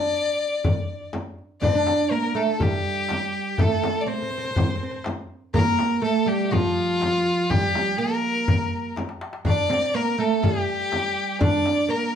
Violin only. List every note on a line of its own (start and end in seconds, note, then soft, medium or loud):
0.00 1.11 D5 loud
1.61 2.13 D5 loud
2.12 2.38 A#4 medium
2.36 2.63 A4 medium
2.62 3.62 G4 medium
3.61 4.03 A4 medium
4.01 4.09 D5 medium
4.08 5.06 C5 medium
5.55 6.00 A#4 loud
6.04 6.30 A4 medium
6.28 6.55 G4 medium
6.53 7.51 F4 loud
7.50 7.99 G4 loud
7.98 8.96 A#4 medium
9.48 9.97 D5 loud
9.96 10.22 A#4 medium
10.20 10.46 A4 medium
10.44 11.41 G4 loud
11.41 11.92 D5 loud
11.90 12.15 A#4 medium